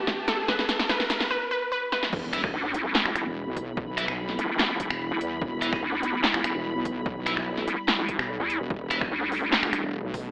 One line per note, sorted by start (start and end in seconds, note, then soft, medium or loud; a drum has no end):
0.00 1.27 E2 medium
0.00 1.27 E3 medium
0.00 1.27 B3 medium
0.00 1.30 B3 medium
0.00 1.27 G4 medium
0.00 1.31 G4 medium
0.00 0.20 B4 loud
0.00 1.27 B4 medium
0.00 1.31 E5 medium
0.00 1.31 A5 medium
0.00 riser medium
0.07 kick loud
0.07 snare medium
0.28 0.47 A4 medium
0.28 snare medium
0.28 closed hi-hat medium
0.48 0.88 B4 medium
0.48 kick medium
0.48 snare medium
0.59 snare medium
0.69 snare medium
0.69 closed hi-hat medium
0.79 snare medium
0.89 1.29 B4 loud
0.89 kick medium
0.89 snare loud
1.00 snare medium
1.10 snare loud
1.10 closed hi-hat medium
1.20 snare medium
1.31 1.50 B4 loud
1.51 1.70 B4 loud
1.72 1.91 B4 loud
1.92 2.11 B4 loud
1.92 snare medium
2.03 snare medium
2.13 2.52 E1 medium
2.13 10.31 G3 medium
2.13 8.66 B3 medium
2.13 8.68 E4 medium
2.13 kick loud
2.13 crash medium
2.13 impact medium
2.33 2.39 E4 medium
2.33 2.39 B4 medium
2.33 2.39 E5 medium
2.33 finger snap medium
2.33 closed hi-hat medium
2.44 finger snap soft
2.44 kick loud
2.54 2.93 D2 loud
2.74 closed hi-hat medium
2.81 10.31 B5 medium
2.95 3.14 G1 loud
2.95 snare loud
2.95 clap medium
3.06 finger snap medium
3.16 3.24 E1 loud
3.16 finger snap medium
3.16 closed hi-hat medium
3.26 3.45 E1 medium
3.47 4.07 B1 loud
3.57 kick medium
3.57 closed hi-hat medium
3.77 kick loud
3.97 4.03 E4 medium
3.97 4.03 B4 medium
3.97 4.03 E5 medium
3.97 finger snap medium
3.97 closed hi-hat medium
4.08 4.37 B1 medium
4.08 finger snap medium
4.29 snare soft
4.39 4.48 G1 loud
4.39 closed hi-hat medium
4.49 4.78 G1 medium
4.59 finger snap medium
4.59 snare loud
4.59 clap medium
4.80 4.89 E1 loud
4.80 kick medium
4.80 closed hi-hat medium
4.90 5.09 E1 loud
4.90 finger snap medium
5.11 5.19 E1 loud
5.21 5.40 E2 loud
5.21 closed hi-hat medium
5.42 5.81 E1 loud
5.42 kick loud
5.62 5.68 E4 medium
5.62 5.68 B4 medium
5.62 5.68 E5 medium
5.62 finger snap medium
5.62 closed hi-hat medium
5.73 finger snap medium
5.73 kick loud
5.83 6.22 D2 loud
6.03 closed hi-hat medium
6.24 6.43 G1 loud
6.24 snare loud
6.24 clap medium
6.34 finger snap medium
6.44 6.53 E1 loud
6.44 finger snap medium
6.44 closed hi-hat medium
6.55 6.74 E1 loud
6.75 7.35 B1 loud
6.85 kick medium
6.85 closed hi-hat medium
7.06 kick loud
7.26 7.32 E4 medium
7.26 7.32 B4 medium
7.26 7.32 E5 medium
7.26 finger snap medium
7.26 closed hi-hat medium
7.37 7.66 B1 medium
7.37 finger snap medium
7.58 snare soft
7.68 7.76 G1 medium
7.68 closed hi-hat medium
7.88 finger snap medium
7.88 snare loud
7.88 clap medium
7.99 8.18 E1 loud
8.09 kick medium
8.09 closed hi-hat medium
8.19 8.38 B1 medium
8.19 finger snap medium
8.40 8.59 E2 loud
8.50 closed hi-hat medium
8.60 8.69 E1 loud
8.70 9.10 E1 loud
8.70 10.31 A3 medium
8.70 10.31 D4 medium
8.70 kick loud
8.90 8.96 E4 medium
8.90 8.96 B4 medium
8.90 8.96 E5 medium
8.90 finger snap medium
8.90 closed hi-hat medium
9.01 finger snap medium
9.01 kick loud
9.11 9.51 D2 loud
9.32 open hi-hat medium
9.53 9.71 G1 loud
9.53 snare loud
9.53 clap medium
9.63 finger snap medium
9.73 9.82 E1 loud
9.73 finger snap medium
9.73 closed hi-hat medium
9.84 10.02 E1 loud
10.04 10.31 B1 loud
10.14 kick medium
10.14 open hi-hat loud
10.21 10.31 A5 medium